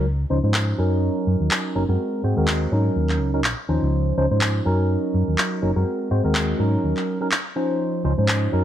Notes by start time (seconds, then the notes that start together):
Already playing: C#2
0.30 C#2 F3 C#4 D#4 C5
0.43 G#2 F3 C#4 D#4 C5
0.54 clap
0.78 F#2 F#3 C#4 D#4 A#4
1.27 F#2
1.40 D#2
1.51 clap
1.75 F#1 F#3 C#4 D#4 A#4
1.88 F#2 G#3 C4 F#4 A#4
2.24 G#2 G#3 C4 F#4 C5
2.37 D#2 G#3 C4 F#4 A#4
2.48 clap
2.71 G#2 F#3 C#4 D#4 A#4
2.96 D#2
3.09 clap
3.20 C#2
3.34 F#3 C#4 D#4 A#4
3.44 A#1, clap
3.69 D#2 F3 C#4 D#4 C5
3.82 C#2
4.17 C#2 F3 C#4 D#4 C5
4.30 G#2 F3 C#4 D#4 C5
4.41 clap
4.65 F#2 F#3 C#4 D#4 A#4
5.14 F#2
5.28 D#2
5.38 clap
5.62 F#1 F#3 C#4 D#4 A#4
5.75 F#2 G#3 C4 F#4 A#4
6.10 G#2 G#3 C4 F#4 C5
6.24 D#2 G#3 C4 F#4 A#4
6.35 clap
6.58 G#2 F#3 C#4 D#4 A#4
6.84 D#2
6.97 clap
7.21 F#3 C#4 D#4 A#4
7.32 clap
7.56 F3 C#4 D#4 C5
8.04 C#2 F3 C#4 D#4 C5
8.18 G#2 F3 C#4 D#4 C5
8.28 clap
8.52 F#2 F#3 C#4 D#4 A#4